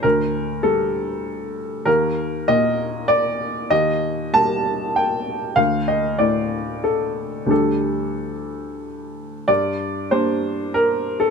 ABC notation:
X:1
M:3/4
L:1/16
Q:1/4=96
K:Gm
V:1 name="Upright piano"
B4 A6 z2 | B4 e4 d4 | e4 a4 g4 | f2 e2 d4 A4 |
A8 z4 | d4 c4 B3 A |]
V:2 name="Upright piano" clef=bass
[D,,A,,]4 G,8 | E,,4 B,,8 | E,,4 G,8 | D,,4 A,,8 |
[D,,G,DG]12 | G,,4 [G,B,D]8 |]